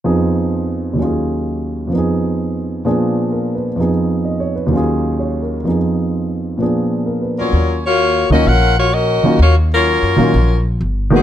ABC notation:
X:1
M:4/4
L:1/16
Q:"Swing" 1/4=128
K:Ebm
V:1 name="Saxophone section"
z16 | z16 | z16 | z12 z2 [G,DFB]2- |
[G,DFB]2 [B,FGd]4 [DGBe]2 [DFBg]2 [B,FGd]2 [DGBe]4 | [B,FGd]2 [G,DFB]8 z4 [G,CEA]2 |]
V:2 name="Grand piano"
z16 | z12 B2 c2- | c z3 (3e2 d2 c2 z4 d2 B2- | B z8 z3 (3B2 c2 =d2 |
z16 | z16 |]
V:3 name="Grand piano"
[F,,F,CEA]8 [E,,E,G,DFA]8 | [F,,F,CEA]8 [B,,F,C=DA]8 | [F,,F,CEA]8 [E,,E,G,DFA]8 | [F,,F,CEA]8 [B,,F,C=DA]8 |
z6 [E,G,B,DF]2 z6 [E,G,B,DF]2 | z6 [E,G,B,DF]2 z6 [E,A,B,CG]2 |]
V:4 name="Upright bass" clef=bass
z16 | z16 | z16 | z16 |
E,,6 =D,,2 B,,,6 z2 | E,,4- (3E,,2 G,,2 B,,2 B,,,4 =G,,,4 |]